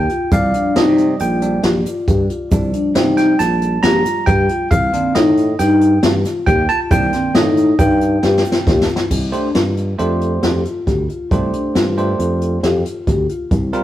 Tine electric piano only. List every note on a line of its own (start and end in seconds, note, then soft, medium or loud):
0.00 0.33 G5 medium
0.32 1.40 F3 medium
0.32 1.41 G3 soft
0.32 2.48 D5 medium
0.32 0.78 F5 medium
0.77 1.21 D#5 medium
1.21 1.61 G5 medium
1.41 1.61 F3 soft
1.41 1.62 G3 soft
1.41 1.62 D4 medium
2.51 4.67 F3 medium
2.51 4.67 G3 soft
2.51 4.68 D4 medium
3.17 3.40 G5 medium
3.39 3.85 A5 medium
3.83 4.28 A#5 loud
4.26 4.68 G5 medium
4.71 5.16 F5 loud
4.93 5.22 D#3 medium
4.93 5.23 A#3 soft
4.93 5.23 D4 medium
5.15 5.60 D#5 medium
5.59 6.00 G5 medium
6.46 6.69 G5 loud
6.69 6.79 A5 loud
6.91 7.53 D#3 medium
6.91 7.54 A#3 soft
6.91 7.54 D4 medium
6.91 7.36 G5 loud
7.35 7.80 D#5 medium
7.79 8.85 G5 medium
9.32 9.48 A3 medium
9.32 9.48 D4 medium
9.32 9.48 G4 medium
9.32 9.48 C5 medium
9.98 10.60 A3 medium
9.98 10.61 D4 medium
9.98 10.61 G4 medium
9.98 10.61 C5 medium
11.31 11.93 A3 medium
11.31 11.93 D4 medium
11.31 11.93 G4 medium
11.31 11.93 C5 medium
11.98 12.59 A3 medium
11.98 12.59 D4 medium
11.98 12.59 G4 medium
11.98 12.59 C5 medium
13.73 13.84 G3 medium
13.73 13.84 C4 medium
13.73 13.84 F4 medium
13.73 13.84 A#4 medium